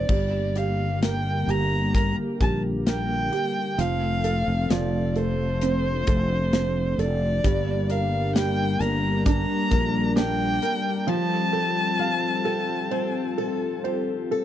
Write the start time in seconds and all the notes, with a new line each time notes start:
Already playing: C4 D#4 A4 C5 D5
0.08 G1 D3 G3 A#3 G4, kick, crash
0.56 G4 F5, closed hi-hat
1.02 A#4 G5, snare, closed hi-hat
1.48 G1 G4 A#5, closed hi-hat
1.95 A#4 A#5, kick, closed hi-hat
2.40 A#1 G4 A5, kick, closed hi-hat
2.86 A#4 G5, snare, closed hi-hat
3.32 G4, closed hi-hat
3.77 F1 F3 A3 C4 A4 F5, closed hi-hat
4.24 A4, closed hi-hat
4.48 F1
4.70 F1 F3 D5, snare, closed hi-hat
5.16 A4 C5, closed hi-hat
5.61 C4 D4, closed hi-hat
6.07 F1 A4, kick, closed hi-hat
6.53 C4, snare, closed hi-hat
6.98 F1 A4 D5, closed hi-hat
7.44 G1 G2 G3 A#3 A#4, kick, closed hi-hat
7.90 D4 A#4 F5, closed hi-hat
8.35 G3 A#3 G5, snare, closed hi-hat
8.80 G1 D4 A#4 A#5, closed hi-hat
9.26 G3 D4 A#5, kick, closed hi-hat
9.71 A#1 A#4, kick, closed hi-hat
10.16 D4 G5, snare, closed hi-hat
10.62 A#4, closed hi-hat
11.07 F3 C4 F4 A4 A5
11.53 G4 A4
11.99 C4 F5
12.45 G4 A4
12.91 C4 C5
13.38 A4
13.84 G4 C5
14.31 A4